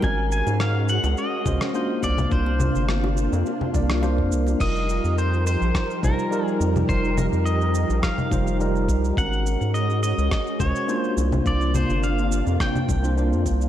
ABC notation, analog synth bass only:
X:1
M:4/4
L:1/16
Q:"Swing 16ths" 1/4=105
K:Fm
V:1 name="Analog synth bass" clef=bass
A,,,3 A,,4 D,, z2 D,, z3 C,,2 | C,,3 G,,,4 F,, z2 C,,3 F,, C,,2 | F,,,3 F,,4 B,,, z2 B,,, z3 F,,2 | F,,,3 F,,4 B,,, z2 F,,,4 C,,2 |
A,,,3 A,,4 D,, z2 D,, z3 C,,2 | C,,3 G,,,4 F,, z2 C,,3 F,, C,,2 |]